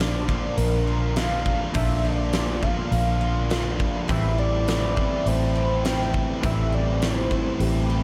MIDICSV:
0, 0, Header, 1, 7, 480
1, 0, Start_track
1, 0, Tempo, 585366
1, 1437, Time_signature, 4, 2, 24, 8
1, 6586, End_track
2, 0, Start_track
2, 0, Title_t, "Soft synth lead"
2, 0, Program_c, 0, 80
2, 0, Note_on_c, 0, 74, 102
2, 469, Note_on_c, 0, 70, 97
2, 481, Note_off_c, 0, 74, 0
2, 955, Note_on_c, 0, 77, 109
2, 968, Note_off_c, 0, 70, 0
2, 1316, Note_off_c, 0, 77, 0
2, 1434, Note_on_c, 0, 76, 104
2, 1662, Note_on_c, 0, 74, 100
2, 1674, Note_off_c, 0, 76, 0
2, 2151, Note_on_c, 0, 77, 106
2, 2163, Note_off_c, 0, 74, 0
2, 3114, Note_off_c, 0, 77, 0
2, 3363, Note_on_c, 0, 76, 105
2, 3583, Note_off_c, 0, 76, 0
2, 3600, Note_on_c, 0, 74, 101
2, 4328, Note_on_c, 0, 72, 109
2, 4341, Note_off_c, 0, 74, 0
2, 4808, Note_on_c, 0, 79, 112
2, 4820, Note_off_c, 0, 72, 0
2, 5162, Note_off_c, 0, 79, 0
2, 5289, Note_on_c, 0, 76, 107
2, 5530, Note_on_c, 0, 74, 94
2, 5542, Note_off_c, 0, 76, 0
2, 5765, Note_on_c, 0, 72, 95
2, 5777, Note_off_c, 0, 74, 0
2, 6236, Note_on_c, 0, 67, 88
2, 6249, Note_off_c, 0, 72, 0
2, 6586, Note_off_c, 0, 67, 0
2, 6586, End_track
3, 0, Start_track
3, 0, Title_t, "Overdriven electric guitar"
3, 0, Program_c, 1, 29
3, 0, Note_on_c, 1, 46, 77
3, 0, Note_on_c, 1, 50, 87
3, 0, Note_on_c, 1, 58, 89
3, 0, Note_on_c, 1, 62, 95
3, 0, Note_on_c, 1, 65, 91
3, 220, Note_off_c, 1, 50, 0
3, 225, Note_off_c, 1, 65, 0
3, 228, Note_off_c, 1, 62, 0
3, 228, Note_on_c, 1, 65, 79
3, 231, Note_on_c, 1, 62, 75
3, 232, Note_off_c, 1, 58, 0
3, 235, Note_on_c, 1, 58, 79
3, 242, Note_on_c, 1, 50, 65
3, 244, Note_off_c, 1, 46, 0
3, 248, Note_on_c, 1, 46, 68
3, 938, Note_off_c, 1, 65, 0
3, 939, Note_off_c, 1, 62, 0
3, 941, Note_off_c, 1, 58, 0
3, 945, Note_off_c, 1, 50, 0
3, 948, Note_off_c, 1, 46, 0
3, 957, Note_on_c, 1, 46, 70
3, 963, Note_on_c, 1, 50, 68
3, 971, Note_on_c, 1, 58, 75
3, 974, Note_on_c, 1, 62, 73
3, 979, Note_on_c, 1, 65, 73
3, 1422, Note_off_c, 1, 46, 0
3, 1425, Note_off_c, 1, 50, 0
3, 1429, Note_off_c, 1, 58, 0
3, 1430, Note_off_c, 1, 62, 0
3, 1431, Note_on_c, 1, 46, 85
3, 1433, Note_off_c, 1, 65, 0
3, 1437, Note_on_c, 1, 50, 85
3, 1445, Note_on_c, 1, 58, 81
3, 1449, Note_on_c, 1, 62, 81
3, 1451, Note_on_c, 1, 65, 92
3, 2133, Note_off_c, 1, 65, 0
3, 2139, Note_off_c, 1, 46, 0
3, 2142, Note_off_c, 1, 50, 0
3, 2143, Note_on_c, 1, 65, 82
3, 2144, Note_off_c, 1, 62, 0
3, 2146, Note_off_c, 1, 58, 0
3, 2154, Note_on_c, 1, 62, 70
3, 2160, Note_on_c, 1, 58, 77
3, 2163, Note_on_c, 1, 50, 69
3, 2169, Note_on_c, 1, 46, 62
3, 2850, Note_off_c, 1, 46, 0
3, 2855, Note_off_c, 1, 65, 0
3, 2856, Note_off_c, 1, 50, 0
3, 2859, Note_off_c, 1, 58, 0
3, 2860, Note_on_c, 1, 46, 66
3, 2861, Note_off_c, 1, 62, 0
3, 2866, Note_on_c, 1, 50, 72
3, 2869, Note_on_c, 1, 58, 82
3, 2877, Note_on_c, 1, 62, 76
3, 2883, Note_on_c, 1, 65, 80
3, 3334, Note_off_c, 1, 46, 0
3, 3337, Note_off_c, 1, 50, 0
3, 3338, Note_off_c, 1, 58, 0
3, 3341, Note_on_c, 1, 45, 84
3, 3342, Note_off_c, 1, 62, 0
3, 3345, Note_off_c, 1, 65, 0
3, 3350, Note_on_c, 1, 52, 82
3, 3355, Note_on_c, 1, 57, 92
3, 3359, Note_on_c, 1, 60, 99
3, 3365, Note_on_c, 1, 64, 95
3, 4059, Note_off_c, 1, 64, 0
3, 4062, Note_on_c, 1, 64, 76
3, 4067, Note_off_c, 1, 60, 0
3, 4070, Note_on_c, 1, 60, 77
3, 4073, Note_off_c, 1, 57, 0
3, 4077, Note_on_c, 1, 57, 78
3, 4078, Note_off_c, 1, 52, 0
3, 4082, Note_on_c, 1, 52, 76
3, 4083, Note_off_c, 1, 45, 0
3, 4087, Note_on_c, 1, 45, 66
3, 4768, Note_off_c, 1, 45, 0
3, 4775, Note_off_c, 1, 64, 0
3, 4778, Note_on_c, 1, 45, 72
3, 4779, Note_off_c, 1, 52, 0
3, 4782, Note_off_c, 1, 57, 0
3, 4789, Note_on_c, 1, 52, 69
3, 4790, Note_on_c, 1, 57, 81
3, 4796, Note_off_c, 1, 60, 0
3, 4800, Note_on_c, 1, 60, 76
3, 4805, Note_on_c, 1, 64, 84
3, 5252, Note_off_c, 1, 45, 0
3, 5258, Note_off_c, 1, 52, 0
3, 5259, Note_off_c, 1, 57, 0
3, 5266, Note_off_c, 1, 64, 0
3, 5270, Note_on_c, 1, 45, 76
3, 5277, Note_on_c, 1, 52, 90
3, 5283, Note_on_c, 1, 57, 86
3, 5288, Note_off_c, 1, 60, 0
3, 5292, Note_on_c, 1, 60, 94
3, 5294, Note_on_c, 1, 64, 89
3, 5975, Note_off_c, 1, 64, 0
3, 5978, Note_off_c, 1, 45, 0
3, 5981, Note_off_c, 1, 52, 0
3, 5981, Note_off_c, 1, 60, 0
3, 5984, Note_off_c, 1, 57, 0
3, 5985, Note_on_c, 1, 64, 86
3, 5991, Note_on_c, 1, 60, 80
3, 5995, Note_on_c, 1, 57, 76
3, 6002, Note_on_c, 1, 52, 70
3, 6010, Note_on_c, 1, 45, 74
3, 6586, Note_off_c, 1, 45, 0
3, 6586, Note_off_c, 1, 52, 0
3, 6586, Note_off_c, 1, 57, 0
3, 6586, Note_off_c, 1, 60, 0
3, 6586, Note_off_c, 1, 64, 0
3, 6586, End_track
4, 0, Start_track
4, 0, Title_t, "Clean electric guitar"
4, 0, Program_c, 2, 27
4, 0, Note_on_c, 2, 53, 86
4, 1420, Note_off_c, 2, 53, 0
4, 1430, Note_on_c, 2, 53, 89
4, 3338, Note_off_c, 2, 53, 0
4, 3363, Note_on_c, 2, 55, 89
4, 5268, Note_off_c, 2, 55, 0
4, 5271, Note_on_c, 2, 55, 91
4, 6586, Note_off_c, 2, 55, 0
4, 6586, End_track
5, 0, Start_track
5, 0, Title_t, "Twelve-string acoustic guitar"
5, 0, Program_c, 3, 25
5, 0, Note_on_c, 3, 53, 69
5, 0, Note_on_c, 3, 57, 71
5, 0, Note_on_c, 3, 65, 67
5, 234, Note_off_c, 3, 53, 0
5, 244, Note_on_c, 3, 53, 69
5, 713, Note_off_c, 3, 65, 0
5, 717, Note_on_c, 3, 65, 64
5, 956, Note_on_c, 3, 62, 62
5, 1186, Note_off_c, 3, 53, 0
5, 1196, Note_on_c, 3, 53, 63
5, 1418, Note_off_c, 3, 53, 0
5, 1427, Note_on_c, 3, 53, 75
5, 1429, Note_off_c, 3, 57, 0
5, 1669, Note_off_c, 3, 53, 0
5, 1679, Note_on_c, 3, 53, 68
5, 1917, Note_off_c, 3, 65, 0
5, 2148, Note_off_c, 3, 53, 0
5, 2156, Note_off_c, 3, 62, 0
5, 2158, Note_on_c, 3, 53, 69
5, 2632, Note_on_c, 3, 65, 69
5, 2871, Note_on_c, 3, 62, 67
5, 3103, Note_off_c, 3, 53, 0
5, 3113, Note_on_c, 3, 53, 65
5, 3342, Note_off_c, 3, 53, 0
5, 3345, Note_on_c, 3, 52, 79
5, 3354, Note_off_c, 3, 62, 0
5, 3354, Note_off_c, 3, 65, 0
5, 3584, Note_off_c, 3, 52, 0
5, 3594, Note_on_c, 3, 52, 67
5, 3832, Note_on_c, 3, 57, 66
5, 4063, Note_off_c, 3, 52, 0
5, 4072, Note_on_c, 3, 52, 66
5, 4305, Note_off_c, 3, 57, 0
5, 4315, Note_on_c, 3, 57, 71
5, 4554, Note_on_c, 3, 67, 69
5, 4796, Note_on_c, 3, 60, 66
5, 5021, Note_off_c, 3, 52, 0
5, 5031, Note_on_c, 3, 52, 71
5, 5265, Note_off_c, 3, 52, 0
5, 5275, Note_on_c, 3, 52, 76
5, 5505, Note_off_c, 3, 52, 0
5, 5515, Note_off_c, 3, 57, 0
5, 5515, Note_on_c, 3, 52, 66
5, 5754, Note_off_c, 3, 67, 0
5, 5760, Note_on_c, 3, 57, 65
5, 5993, Note_off_c, 3, 52, 0
5, 5995, Note_off_c, 3, 60, 0
5, 6002, Note_on_c, 3, 52, 70
5, 6224, Note_off_c, 3, 57, 0
5, 6234, Note_on_c, 3, 57, 68
5, 6476, Note_on_c, 3, 67, 70
5, 6586, Note_off_c, 3, 52, 0
5, 6586, Note_off_c, 3, 57, 0
5, 6586, Note_off_c, 3, 67, 0
5, 6586, End_track
6, 0, Start_track
6, 0, Title_t, "Fingered electric bass"
6, 0, Program_c, 4, 33
6, 0, Note_on_c, 4, 34, 105
6, 311, Note_off_c, 4, 34, 0
6, 473, Note_on_c, 4, 34, 90
6, 1268, Note_off_c, 4, 34, 0
6, 1431, Note_on_c, 4, 34, 96
6, 2227, Note_off_c, 4, 34, 0
6, 2391, Note_on_c, 4, 34, 88
6, 3187, Note_off_c, 4, 34, 0
6, 3354, Note_on_c, 4, 33, 102
6, 4149, Note_off_c, 4, 33, 0
6, 4312, Note_on_c, 4, 33, 89
6, 5107, Note_off_c, 4, 33, 0
6, 5274, Note_on_c, 4, 33, 101
6, 6068, Note_off_c, 4, 33, 0
6, 6230, Note_on_c, 4, 33, 92
6, 6586, Note_off_c, 4, 33, 0
6, 6586, End_track
7, 0, Start_track
7, 0, Title_t, "Drums"
7, 1, Note_on_c, 9, 46, 48
7, 7, Note_on_c, 9, 38, 102
7, 83, Note_off_c, 9, 46, 0
7, 89, Note_off_c, 9, 38, 0
7, 236, Note_on_c, 9, 36, 81
7, 318, Note_off_c, 9, 36, 0
7, 473, Note_on_c, 9, 46, 49
7, 555, Note_off_c, 9, 46, 0
7, 953, Note_on_c, 9, 46, 44
7, 959, Note_on_c, 9, 38, 97
7, 1035, Note_off_c, 9, 46, 0
7, 1041, Note_off_c, 9, 38, 0
7, 1196, Note_on_c, 9, 36, 82
7, 1278, Note_off_c, 9, 36, 0
7, 1431, Note_on_c, 9, 46, 50
7, 1435, Note_on_c, 9, 36, 106
7, 1513, Note_off_c, 9, 46, 0
7, 1517, Note_off_c, 9, 36, 0
7, 1910, Note_on_c, 9, 46, 50
7, 1915, Note_on_c, 9, 38, 101
7, 1992, Note_off_c, 9, 46, 0
7, 1997, Note_off_c, 9, 38, 0
7, 2154, Note_on_c, 9, 36, 76
7, 2236, Note_off_c, 9, 36, 0
7, 2395, Note_on_c, 9, 46, 47
7, 2477, Note_off_c, 9, 46, 0
7, 2875, Note_on_c, 9, 46, 40
7, 2880, Note_on_c, 9, 38, 104
7, 2957, Note_off_c, 9, 46, 0
7, 2962, Note_off_c, 9, 38, 0
7, 3116, Note_on_c, 9, 36, 84
7, 3198, Note_off_c, 9, 36, 0
7, 3356, Note_on_c, 9, 36, 105
7, 3357, Note_on_c, 9, 46, 44
7, 3438, Note_off_c, 9, 36, 0
7, 3439, Note_off_c, 9, 46, 0
7, 3837, Note_on_c, 9, 46, 50
7, 3843, Note_on_c, 9, 38, 102
7, 3919, Note_off_c, 9, 46, 0
7, 3925, Note_off_c, 9, 38, 0
7, 4078, Note_on_c, 9, 36, 80
7, 4160, Note_off_c, 9, 36, 0
7, 4320, Note_on_c, 9, 46, 48
7, 4402, Note_off_c, 9, 46, 0
7, 4797, Note_on_c, 9, 46, 46
7, 4802, Note_on_c, 9, 38, 105
7, 4879, Note_off_c, 9, 46, 0
7, 4884, Note_off_c, 9, 38, 0
7, 4925, Note_on_c, 9, 38, 28
7, 5007, Note_off_c, 9, 38, 0
7, 5037, Note_on_c, 9, 36, 87
7, 5119, Note_off_c, 9, 36, 0
7, 5275, Note_on_c, 9, 46, 50
7, 5276, Note_on_c, 9, 36, 102
7, 5357, Note_off_c, 9, 46, 0
7, 5358, Note_off_c, 9, 36, 0
7, 5756, Note_on_c, 9, 46, 50
7, 5762, Note_on_c, 9, 38, 112
7, 5838, Note_off_c, 9, 46, 0
7, 5844, Note_off_c, 9, 38, 0
7, 5994, Note_on_c, 9, 36, 78
7, 6076, Note_off_c, 9, 36, 0
7, 6235, Note_on_c, 9, 46, 49
7, 6317, Note_off_c, 9, 46, 0
7, 6586, End_track
0, 0, End_of_file